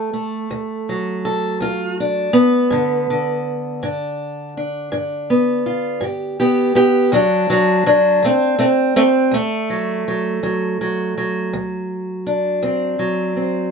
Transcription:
Already playing: A3 A4
0.13 A3
0.51 D2
0.89 F#3
1.25 A4
1.60 D2 F4
2.00 D4
2.33 B3
2.70 G2 D3
3.10 D3
3.83 G2 D4
4.57 D4
4.92 G2 D4
5.30 B3
5.66 F4
6.01 G2 B3 G4
6.40 B3 G4
6.75 B3 G4
7.12 D2 F#3 D4
7.50 F#3 D4
7.86 F#3 D4
8.23 D2 A3 C4
8.59 A3 C4
8.96 A3 C4
9.31 D2 A3
9.70 F#3
10.08 F#3
10.43 D2 F#3
10.81 F#3
11.18 F#3
11.53 D2
12.27 D4
12.62 D2 C4
12.99 F#3
13.36 C4

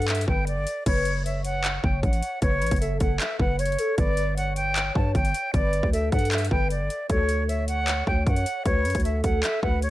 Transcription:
Already playing: G2 A4
0.02 closed hi-hat
0.08 E5, clap, closed hi-hat
0.15 closed hi-hat
0.21 closed hi-hat
0.28 G1 B4 G5, kick
0.47 F#1 D5, closed hi-hat
0.57 G1
0.67 closed hi-hat
0.86 F#1 B4 C#5, kick, closed hi-hat, crash
1.05 closed hi-hat
1.25 C#5 E5, closed hi-hat
1.45 F#5, closed hi-hat
1.64 clap, closed hi-hat
1.84 F#1 G5, kick
2.03 A1 F#5, kick, closed hi-hat
2.13 closed hi-hat
2.23 closed hi-hat
2.42 F#1 B4 C#5, kick, closed hi-hat
2.62 A1, closed hi-hat
2.66 closed hi-hat
2.71 F#1, kick, closed hi-hat
2.76 closed hi-hat
2.81 A4 E5, closed hi-hat
3.00 F#1 F#5, kick, closed hi-hat
3.20 E5, clap, closed hi-hat
3.40 F#1 B4 F#5, kick
3.59 C#5, closed hi-hat
3.65 closed hi-hat
3.72 closed hi-hat
3.79 A4, closed hi-hat
3.98 G1 B4 D5, kick, closed hi-hat
4.17 closed hi-hat
4.37 C#5 F#5, closed hi-hat
4.56 G5, closed hi-hat
4.76 clap, closed hi-hat
4.95 G2 A5, kick
5.15 G1 G5, kick, closed hi-hat
5.25 closed hi-hat
5.34 closed hi-hat
5.53 G1 B4 D5, kick, closed hi-hat
5.73 closed hi-hat
5.83 D2, kick
5.93 A4 E5, closed hi-hat
6.12 G2 F#5, kick, closed hi-hat
6.19 closed hi-hat
6.25 closed hi-hat
6.32 E5, clap, closed hi-hat
6.38 closed hi-hat
6.45 closed hi-hat
6.51 G1 B4 G5, kick
6.70 F#1 D5, closed hi-hat
6.80 G1
6.90 closed hi-hat
7.09 D2 A4 C#5, kick, closed hi-hat
7.29 closed hi-hat
7.48 C#5 E5, closed hi-hat
7.68 F#5, closed hi-hat
7.88 clap, closed hi-hat
8.07 D2 G5, kick
8.27 F#2 F#5, kick, closed hi-hat
8.36 closed hi-hat
8.46 closed hi-hat
8.65 D2 B4 C#5, kick, closed hi-hat
8.85 F#2, closed hi-hat
8.90 closed hi-hat
8.95 D2, kick, closed hi-hat
9.00 closed hi-hat
9.04 A4 E5, closed hi-hat
9.24 D2 F#5, kick, closed hi-hat
9.43 E5, clap, closed hi-hat
9.63 D2 B4 F#5, kick
9.82 C#5, closed hi-hat

